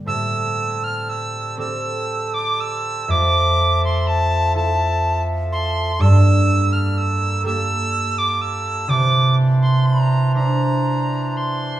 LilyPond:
<<
  \new Staff \with { instrumentName = "Tin whistle" } { \time 6/8 \key a \phrygian \tempo 4. = 41 e'''8. f'''16 e'''8 e'''8. d'''16 e'''8 | d'''8. c'''16 a''8 a''8. r16 c'''8 | e'''8. f'''16 e'''8 e'''8. d'''16 e'''8 | d'''8 r16 c'''16 bes''8 bes''4 c'''8 | }
  \new Staff \with { instrumentName = "Harp" } { \time 6/8 \key a \phrygian a,4. <c' g' a'>4. | f,4. <e' f' a'>4. | g,4. <bes g' a'>4. | c4. <d' e' c''>4. | }
  \new Staff \with { instrumentName = "Accordion" } { \time 6/8 \key a \phrygian a'2. | a'2.~ | a'2. | c''2. | }
  \new Staff \with { instrumentName = "Accordion" } { \clef bass \time 6/8 \key a \phrygian <g c'>2. | <f e''>2. | <g bes>2. | <e d'>2. | }
>>